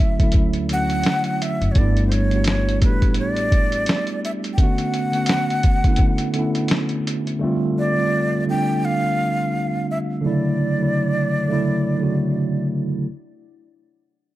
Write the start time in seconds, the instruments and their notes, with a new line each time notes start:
Already playing: tine electric piano D3 F#3 A3 C#4 E4, flute E5
0.00 upright bass D2
0.18 tine electric piano D3 F#3 A3 C#4, kick, closed hi-hat
0.23 tine electric piano E4
0.32 kick, closed hi-hat
0.53 closed hi-hat
0.69 tine electric piano D3 F#3 A3, flute F#5, closed hi-hat
0.74 tine electric piano C#4 F#4
0.90 closed hi-hat
1.03 snare, closed hi-hat
1.24 closed hi-hat
1.42 flute E5, closed hi-hat
1.61 upright bass F#1, closed hi-hat
1.72 tine electric piano G3, flute C#5, closed hi-hat
1.76 upright bass G1, tine electric piano A3 B3 D4, flute D5, kick
1.80 tine electric piano E4
1.97 closed hi-hat
2.07 flute C5
2.12 flute C#5, closed hi-hat
2.30 tine electric piano G3 A3 B3 D4, closed hi-hat
2.35 tine electric piano F#4
2.44 flute C#5, snare, closed hi-hat
2.69 closed hi-hat
2.82 upright bass A1, tine electric piano G3 A3 B3 D4, flute B4, kick, closed hi-hat
2.87 tine electric piano G4
3.02 kick, closed hi-hat
3.14 closed hi-hat
3.18 flute D5
3.36 closed hi-hat
3.52 kick, closed hi-hat
3.72 closed hi-hat
3.86 snare, closed hi-hat
4.07 closed hi-hat
4.25 flute E5, closed hi-hat
4.44 closed hi-hat
4.53 flute G5
4.58 tine electric piano D3 A3 B3 C#4, flute F#5, kick, closed hi-hat
4.63 tine electric piano F#4
4.78 closed hi-hat
4.94 closed hi-hat
5.11 tine electric piano D3 A3 B3 C#4, closed hi-hat
5.17 tine electric piano F#4
5.26 snare, closed hi-hat
5.50 closed hi-hat
5.63 kick, closed hi-hat
5.83 tine electric piano D3 A3 B3 C#4, kick, closed hi-hat
5.88 tine electric piano E4
5.96 kick, closed hi-hat
6.18 closed hi-hat
6.34 tine electric piano D3 A3 B3, closed hi-hat
6.38 tine electric piano C#4 E4
6.55 closed hi-hat
6.68 snare, closed hi-hat
6.89 closed hi-hat
7.07 closed hi-hat
7.27 closed hi-hat
7.39 tine electric piano D3 G3 A3 C4
7.44 tine electric piano F4
7.79 flute D5
7.95 tine electric piano D3 G3 A3 C4
8.00 tine electric piano F4
8.46 tine electric piano D3 G3 A3, flute G5
8.50 tine electric piano C4 D4
8.85 flute F5
9.91 flute E5
10.21 tine electric piano C#3 D3 F#3 A3, flute D5
10.26 tine electric piano E4
10.78 tine electric piano C#3 D3 F#3 A3
10.83 tine electric piano E4
11.48 tine electric piano C#3 D3 F#3 A3
11.52 tine electric piano E4
11.98 tine electric piano D3 F#3 A3
12.02 tine electric piano C#3 F#4